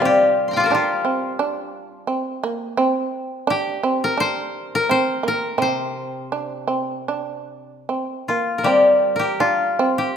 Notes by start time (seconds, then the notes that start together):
Already playing: C3 F4 A#4 C5
0.00 G3 C4
0.05 G4
0.48 A#5 C6
0.53 F4 F5 G5
0.60 C5 D5
0.66 A#4
0.70 D4 G4
0.75 F4
1.05 C4
1.39 D4
2.07 C4
2.44 A#3
2.77 C4
3.47 D4 G4
3.83 C4
4.04 A#4
4.18 D4 C5
4.75 A#4
4.89 C4 C5
5.23 A#3
5.28 A#4
5.58 C3 C4
5.62 C5
6.32 D4
6.68 C4
7.08 D4
7.89 C4
8.28 A#3 F4
8.58 A#4
8.63 G3 C4 G4
9.16 G4 A#4
9.40 D4 F4
9.79 C4
9.98 G4